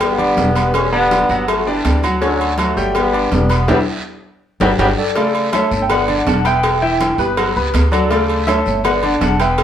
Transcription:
Already playing: G1 G3 G4 G5
0.00 G3 B3, cowbell, high conga, low conga, low agogo, long guiro
0.18 D4 D5 D6, high conga, low conga, low agogo
0.37 E1, cowbell, high conga, low timbale, short guiro
0.55 B3 B4 B5, cowbell, low agogo, short guiro
0.74 G3 C#4, cowbell, high conga, low agogo, long guiro
0.92 D3 G3 B3 D4 D5, high conga
1.11 cowbell, high conga, low timbale, low agogo, short guiro
1.29 G1 F#3 F#4 F#5, high conga, short guiro
1.48 F#3 A3, cowbell, high conga, low agogo, long guiro
1.66 D3 E3 G3 D4 D5, high conga
1.84 D2, cowbell, high conga, low timbale, low agogo, short guiro
2.03 F#3 F#4 F#5, high conga, low agogo, short guiro
2.21 D3 F#3 C#4 C#5, cowbell, low agogo, long guiro
2.40 high conga, low agogo
2.58 F#3 A3 F#4 F#5, cowbell, high conga, low timbale, low agogo, short guiro
2.77 G1 G3 G4 G5, high conga, short guiro
2.95 G3 B3, cowbell, high conga, low conga, low agogo, long guiro
3.13 D4 D5 D6, high conga, low agogo
3.32 E1 G3 B3, cowbell, high conga, low timbale, short guiro
3.49 B3 B4 B5, cowbell, high conga, low agogo, short guiro
3.68 E2 E3 G3 B3 D4 E4 G4, cowbell, high conga, high timbale, long guiro
4.60 G1 F#3 G3 B3 D4 F#4 G4, cowbell, high conga, high timbale, long guiro
4.79 G1 F#3 G3 B3 D4 F#4 G4, cowbell, high conga, high timbale, long guiro
4.98 A4 D5
5.15 C#3 A3 D5, cowbell, high conga, low agogo, long guiro
5.35 high conga, low agogo
5.52 A3 A4 C#5 E5 A5, cowbell, high conga, low timbale, low agogo, short guiro
5.71 G1, high conga, short guiro
5.82 G5
5.89 B3 B4 D5 F#5 B5, cowbell, high conga, low conga, low agogo, long guiro
6.08 D3 D4 D5, high conga, low conga, low agogo
6.27 E1 F#5 A5, cowbell, high conga, low timbale, short guiro
6.44 B3 B4 E5 G5 B5, cowbell, high conga, low agogo, short guiro
6.63 cowbell, high conga, low agogo, long guiro
6.82 E3 E4 E5 G5, high conga
7.00 cowbell, high conga, low timbale, low agogo, short guiro
7.18 G1 B3 G4 B4 B5, short guiro
7.37 F#3 F#4 F#5, cowbell, high conga, low agogo, long guiro
7.55 C#2 B3 B4 B5, high conga
7.74 D2, cowbell, high conga, low timbale, low agogo, short guiro
7.92 F#3 F#4 A4 D5 F#5, high conga, low agogo, short guiro
8.10 C#3 A3 D5, cowbell, high conga, low agogo, long guiro
8.29 high conga, low agogo
8.47 A3 A4 C#5 E5 A5, cowbell, high conga, low timbale, low agogo, short guiro
8.65 G1, high conga, short guiro
8.84 B3 B4 D5 F#5 B5, cowbell, high conga, low conga, low agogo, long guiro
9.03 D3 D4 D5, high conga, low conga, low agogo
9.21 E1 F#5 A5, cowbell, high conga, low timbale, short guiro
9.40 B3 B4 E5 G5 B5, cowbell, high conga, low agogo, short guiro
9.58 cowbell, high conga, low agogo, long guiro

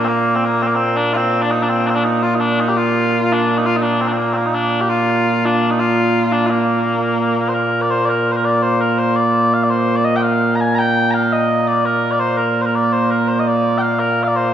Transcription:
Already playing: A#2 A#3
0.04 A#3 C4
0.35 C4
0.45 A#3
0.62 C4
0.67 A#3
0.75 C4
0.96 D4
1.13 C4 F4
1.42 D4
1.51 D#4
1.62 D4
1.69 C4
1.87 C4 D4
1.95 D4
2.04 D#4
2.23 F4
2.35 D#4
2.40 D4
2.60 D#4
2.68 G4
2.77 F4
3.32 D4
3.57 D#4
3.66 F4
3.76 D#4
3.82 D4
4.01 C4
4.08 D4
4.12 C4
4.17 A#3
4.33 A#3 C4
4.46 D#4
4.54 D4
4.81 G4
4.89 F4
5.45 D4
5.70 D#4
5.79 F4
6.32 D4
6.46 A#3 F4
7.48 C5
7.54 A#4
7.81 D5
7.91 C5
8.05 A#4 D5
8.32 C5
8.36 A#4
8.45 D5
8.62 C5
8.81 A#4
8.98 C5
9.16 D5
9.54 F5
9.63 D5
9.70 C5
9.96 D5
10.04 D#5
10.16 G5
10.22 F5
10.55 A#5
10.61 G#5
10.75 G5 A#5
11.11 F5 A#5
11.33 D#5
11.68 D5
11.85 A#4
12.11 D5
12.20 C5
12.37 A#4
12.61 C5
12.66 A#4
12.75 D5
12.92 C5
13.10 A#4
13.28 C5
13.39 D#5
13.47 D5
13.78 F5 G5
13.99 A#4
14.23 F5
14.28 D5
14.36 C5

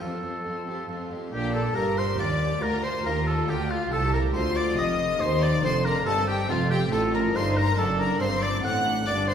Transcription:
Already playing: C4
0.00 F2 C4 F4 A4 C6
0.23 F2 C4 F4 C6
0.45 F2 C4 F4 C6
0.66 F2 C4 G4 C6
0.88 F2 C4 F4 C6
1.10 F2 C4 G4 C6
1.32 A#1 A#2 D4 G4 G5
1.53 A4 A5
1.75 G1 G2 A#3 D4 F4 G4 A#4 A#5
1.96 C5 C6
2.18 D#2 A#3 D4 F4 D5 D6
2.61 D2 F4 A#4 A#5
2.83 C5 C6
3.05 D#2 A#3 D4 F4 A#4 A#5
3.26 A4 A5
3.48 D2 A#3 D4 F4 G4 G5
3.69 F4 F5
3.90 C2 G4 A4 A5
4.13 A#4 A#5
4.33 D2 D#4 F4 G4 C5 C6
4.56 D5 D6
4.76 F1 F2 D#4 G4 D#5 D#6
5.19 D#2 D#4 C5 C6
5.42 D5 D6
5.62 F1 F2 C4 D4 D#4 G4 C5 C6
5.85 A#4 A#5
6.05 G1 G2 C4 D#4 G4 A4 A5
6.28 G4 G5
6.49 F1 F2 F4 F5
6.70 G4 G5
6.91 A1 A2 C4 D#4 F4 A4 A5
7.13 A#4 A#5
7.34 G1 G2 C4 D#4 A4 C5 C6
7.56 A#4 A#5
7.77 F#1 F#2 D4 A4 A5
7.99 A#4 A#5
8.20 G1 G2 C4 D4 A4 C5 C6
8.42 D5 D6
8.63 A1 A2 C4 D4 A4 F#5 F#6
8.85 D4
9.06 G1 G2 A#3 D4 A#4 D5 D6
9.28 C5 C6

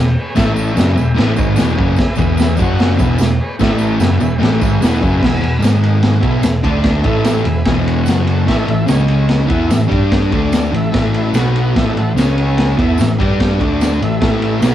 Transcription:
Already playing: E1 E2 B2
0.19 G#4 B4 C#5
0.35 A1 A2 E3 A3 E4 A4 E5, kick, snare, tambourine, crash
0.56 E4 A4 C#5, tambourine
0.74 F#1 F#2 C#3 F#3 G#4 B4 E5, tambourine, crash
0.79 snare
0.95 E1 E2 B2 G#4 B4 E5, tambourine
1.14 A2 E3 A3 G#4 B4 E5, tambourine, crash
1.19 A1, snare
1.34 G#2 D#3 G#3 G#4, tambourine
1.38 G#1 B4 C#5, kick
1.54 E2 B2 E3 G#4 B4 D5, tambourine, crash
1.58 E1, snare
1.76 F#1 F#2 C#3 F#3 G#4 B4 D5, kick
1.96 E5, kick, snare, tambourine, crash
2.01 G#4 B4
2.15 E1 E2 B2 E3 G#4 B4, kick, tambourine
2.21 E5
2.37 G#4 B4 E5, snare, tambourine, crash
2.57 F#1 F#2 C#3 F#3, kick, tambourine
2.62 F#4 C#5 F#5
2.79 snare, tambourine, crash
2.97 E1 E2 B2 E3 G#4 B4 E5, kick, tambourine
3.18 E1 E2 B2, snare, tambourine, crash
3.40 G#4 B4 C#5
3.59 A1 A2 E3 A3 E4 A4 E5, kick, snare, tambourine, crash
3.78 E4 A4 B4, tambourine
3.99 F#1 F#2 C#3 F#3 G#4 B4 E5, snare, tambourine, crash
4.20 E1 E2 B2 G#4 B4 E5, tambourine
4.38 A1 A2 E3 A3 G#4 B4 E5, tambourine
4.43 snare, crash
4.59 G#1 G#2 D#3 G#3 G#4 B4 E5, kick, tambourine
4.80 E1 E2 B2 G#4 B4 F#5, snare, tambourine, crash
4.84 E3
4.98 F#2 C#3 G#4 B4 E5
5.03 F#1 F#3, kick, tambourine
5.19 E1 E2 G#4 B4 E5
5.23 B2 E3, kick, snare, crash
5.41 E1 E2 B2 G#4 B4 F#5, ride
5.59 G#1 G#2 D#3 G#3 D#4 G#4 D#5, tambourine
5.64 snare, ride
5.83 D#4 G#4 D#5, ride
6.02 D#4 G#4 F#5, snare, ride
6.20 B1 B2 F#3 B3 E4 G#4 B4, kick, ride
6.42 E1 E2 B2, snare, ride, tambourine
6.63 D2 D3 A3 D4 A4 D5, kick, ride
6.84 kick, snare, ride
7.00 E4 A4 E5, ride
7.05 A1 A2 E3 A3, kick
7.24 snare, ride, tambourine
7.44 E1 E2 B2 G#4 B4 E5, ride
7.65 E1 E2 B2 E3, kick, snare, ride
7.85 G#4 B4 C#5, ride
8.03 F#1 F#4 C#5 F#5, tambourine
8.08 F#2 C#3 F#3, snare, ride
8.27 F#4 C#5 A5, ride
8.47 A1 A2 E3 A3 E4 A4 E5, kick, snare, ride
8.67 A1 A2 E3 E4 A4 E5, ride
8.86 C#2 C#3 G#3 C#4 G#4 C#5, snare, ride, tambourine
9.08 C#4 G#4 C#5, ride
9.29 C#4 G#4 B4, snare, ride
9.47 E2 E3 B3 E4, kick, ride
9.51 A4 E5
9.69 A1 A2 E3, snare, ride, tambourine
9.88 G2 G3 D4 G4, kick, ride
9.94 D4 G4 D5
10.11 kick, snare, ride
10.30 D2 D3 A3 D4, kick, ride
10.35 A4 D5
10.52 snare, ride, tambourine
10.72 A1 A2 E3 A4 E5, ride
10.76 E4
10.92 A1 A2 E3 A3, kick, snare, ride
11.14 E4 A4 E5, ride
11.34 B1 B2 F#3 B3 F#4 B4 F#5, snare, ride, tambourine
11.56 F#4 B4 F#5, ride
11.76 A1 A2 E3 A3 E4 A4 E5, kick, snare, ride
11.95 A1 A2 E3 E4 A4 F#5, ride
12.15 C#2 C#3 G#3 C#4, snare, ride, tambourine
12.22 C#4 G#4 C#5
12.38 C#4 G#4 C#5, ride
12.58 G#4, snare, ride
12.63 C#4 C#5
12.78 E2 E3 B3 E4 E5, kick, ride
12.82 E4 A4
12.98 A1 A2 E3, snare, ride, tambourine
13.19 G2 G3 D4 G4 D5, kick, ride
13.40 kick, snare, ride
13.60 D2 D3 A3 D4 A4 D5, kick, ride
13.81 snare, ride, tambourine
14.01 A1 A2 E3 E4 A4 E5, ride
14.21 A1 A2 E3 A3, kick, snare, ride
14.42 E4 A4 E5, ride
14.61 B1 B2 F#3 B3, snare, ride, tambourine
14.67 F#4 B4 F#5

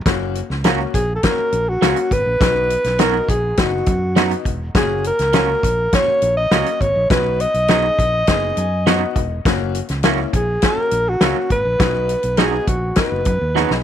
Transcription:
0.06 F#1 A#3 C#4 F#4, kick, snare, closed hi-hat
0.35 closed hi-hat
0.50 C#2, snare
0.64 F#3 A#3 C#4 F#4, snare, closed hi-hat
0.94 A#1 G#4, kick, closed hi-hat
1.16 A4
1.23 A#3 C#4 F#4 A#4, kick, snare, closed hi-hat
1.39 muted fingered electric bass stroke
1.52 A#1, closed hi-hat
1.69 F#4
1.81 C#2 F#3 A#3 C#4 F#4, snare, closed hi-hat
1.96 closed hi-hat
2.11 G#1 B4, kick, closed hi-hat
2.26 A#1
2.40 B1 B3 D#4 F#4, kick, snare, closed hi-hat
2.70 closed hi-hat
2.84 B1, snare, closed hi-hat
2.98 F#3 B3 D#4 F#4 A#4, snare, closed hi-hat
3.29 A#1 G#4, kick, closed hi-hat
3.57 F#1 B3 D#4 F#4, kick, snare, closed hi-hat
3.86 F#2, kick, closed hi-hat
4.16 F#3 B3 D#4 F#4, snare, closed hi-hat
4.31 closed hi-hat
4.45 E1, kick, closed hi-hat
4.75 F#1 A#3 C#4 F#4 G#4, kick, snare, closed hi-hat
5.04 A#4, closed hi-hat
5.19 C#2, snare, closed hi-hat
5.33 F#3 A#3 C#4 F#4, snare, closed hi-hat
5.63 A#1, kick, closed hi-hat
5.93 A#3 C#4 F#4 C#5, kick, snare, closed hi-hat
6.08 muted fingered electric bass stroke
6.22 A#1, closed hi-hat
6.37 D#5
6.51 C#2 F#3 A#3 C#4 F#4, snare, closed hi-hat
6.66 closed hi-hat
6.81 G#1 C#5, kick, closed hi-hat
6.96 A#1
7.10 B1 B3 D#4 F#4 B4, kick, snare, closed hi-hat
7.40 D#5, closed hi-hat
7.54 B1, closed hi-hat
7.68 F#3 B3 D#4 F#4 G#4, snare, closed hi-hat
7.99 A#1, kick, closed hi-hat
8.27 F#1 B3 D#4 G#4, kick, snare, closed hi-hat
8.57 F#2 G#5, closed hi-hat
8.86 F#3 B3 D#4 F#4 F#5, snare, closed hi-hat
9.16 E1 D#5, kick, closed hi-hat
9.45 F#1 A#3 C#4 F#4, kick, snare, closed hi-hat
9.75 closed hi-hat
9.89 C#2, snare, closed hi-hat
10.03 F#3 A#3 C#4 E4 F#4, snare, closed hi-hat
10.33 A#1 G#4, kick, closed hi-hat
10.62 A#3 C#4 F#4 A#4, kick, snare, closed hi-hat
10.77 muted fingered electric bass stroke
10.91 A#1, closed hi-hat
11.09 F#4
11.20 C#2 F#3 A#3 C#4 F#4, snare, closed hi-hat
11.50 G#1 B4, kick, closed hi-hat
11.65 A#1
11.79 B1 B3 D#4 F#4, kick, snare, closed hi-hat
12.09 closed hi-hat
12.23 B1, closed hi-hat
12.37 F#3 B3 D#4 F#4 G#4, snare, closed hi-hat
12.67 A#1 F#4, kick, closed hi-hat
12.96 B3 D#4 F#4 B4, kick, snare, closed hi-hat
13.12 F#1
13.25 F#2, kick, closed hi-hat
13.41 D#2
13.55 F#3 B3 D#4 F#4 G#4, snare
13.70 B1, snare

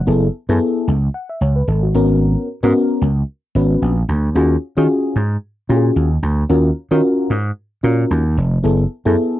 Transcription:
0.07 F#1 B3 E4 G#4 A4
0.49 F#2 B3 E4 G#4 A4
0.88 C#2
1.14 F#5
1.29 E5
1.41 C#2 C#5
1.56 B4
1.68 G#1 A4
1.83 F#4
1.94 G#1 B3 C#4 F#4 A#4
2.63 G#2 B3 C#4 F#4 A#4
3.02 C#2
3.55 G#1 B3 C#4 F#4 B4
3.82 A#1
4.09 D2
4.35 D#2 C#4 F4 F#4 G#4
4.77 D#3 C#4 F4 F#4 G#4
5.16 G#2
5.69 A#2 C#4 F4 F#4 G4
5.76 G#4
5.96 D#2
6.23 D2
6.49 D#2 C#4 F4 F#4 A#4
6.91 D#3 C#4 F4 F#4 A#4
7.30 G#2
7.83 A#2 C#4 F4 F#4 A#4
8.11 D#2
8.37 F1
8.63 F#1 B3 E4 G#4 A4
9.05 F#2 B3 E4 G#4 A4

